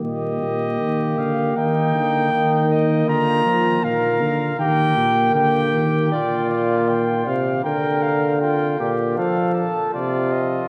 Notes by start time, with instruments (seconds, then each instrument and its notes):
0.02 tuba A#2, euphonium A#3, flugelhorn G4, trumpet D#5
0.41 tuba A#2
0.80 tuba D#3
1.18 tuba D3, trumpet F5
1.56 tuba D#3, flugelhorn D#4, trumpet G5
1.95 tuba D3
2.33 tuba D#3, flugelhorn D#4
2.71 trumpet D#5
3.07 tuba D3, flugelhorn F4, trumpet A#5
3.46 tuba F3
3.84 tuba A#2, flugelhorn A#4, trumpet F5
4.21 tuba D3
4.59 tuba D#3, euphonium A#3, flugelhorn G4, trumpet G5
4.97 tuba A#2
5.34 tuba D3, flugelhorn G4, trumpet G5
5.73 tuba D#3
6.12 euphonium A#2, flugelhorn F4, trumpet D5
6.50 trumpet D5
6.88 trumpet G5
7.27 euphonium C3, trumpet F5
7.64 euphonium D3, flugelhorn A#4, trumpet G5
8.02 trumpet F5
8.41 flugelhorn F4, trumpet G5
8.80 euphonium A#2, flugelhorn G4
9.16 euphonium F3, flugelhorn A4, trumpet F5
9.55 trumpet A5
9.94 euphonium C3, flugelhorn F4, trumpet D5
10.32 trumpet D#5